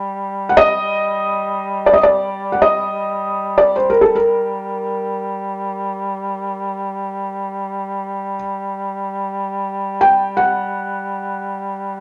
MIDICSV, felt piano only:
0, 0, Header, 1, 2, 480
1, 0, Start_track
1, 0, Key_signature, -2, "minor"
1, 0, Tempo, 500000
1, 11522, End_track
2, 0, Start_track
2, 0, Title_t, "Felt piano"
2, 0, Program_c, 0, 0
2, 474, Note_on_c, 0, 78, 62
2, 545, Note_off_c, 0, 78, 0
2, 547, Note_on_c, 0, 75, 100
2, 1790, Note_on_c, 0, 74, 79
2, 1808, Note_off_c, 0, 75, 0
2, 1857, Note_on_c, 0, 75, 65
2, 1859, Note_off_c, 0, 74, 0
2, 1931, Note_off_c, 0, 75, 0
2, 1952, Note_on_c, 0, 74, 77
2, 2422, Note_on_c, 0, 78, 57
2, 2491, Note_off_c, 0, 78, 0
2, 2512, Note_off_c, 0, 74, 0
2, 2513, Note_on_c, 0, 75, 80
2, 3434, Note_on_c, 0, 74, 76
2, 3440, Note_off_c, 0, 75, 0
2, 3602, Note_off_c, 0, 74, 0
2, 3608, Note_on_c, 0, 72, 65
2, 3738, Note_off_c, 0, 72, 0
2, 3741, Note_on_c, 0, 70, 73
2, 3846, Note_off_c, 0, 70, 0
2, 3852, Note_on_c, 0, 69, 72
2, 3987, Note_on_c, 0, 70, 66
2, 3991, Note_off_c, 0, 69, 0
2, 8017, Note_off_c, 0, 70, 0
2, 9609, Note_on_c, 0, 79, 71
2, 9953, Note_on_c, 0, 78, 74
2, 9975, Note_off_c, 0, 79, 0
2, 11522, Note_off_c, 0, 78, 0
2, 11522, End_track
0, 0, End_of_file